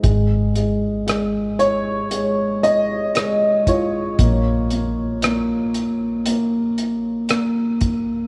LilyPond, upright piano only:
<<
  \new Staff \with { instrumentName = "Upright piano" } { \time 4/4 \key des \major \tempo 4 = 58 r4. des''4 ees''4 <f' des''>8~ | <f' des''>2. r4 | }
  \new Staff \with { instrumentName = "Upright piano" } { \time 4/4 \key des \major aes8 aes8 aes4 aes4 aes4 | bes8 bes8 bes4 bes4 bes4 | }
>>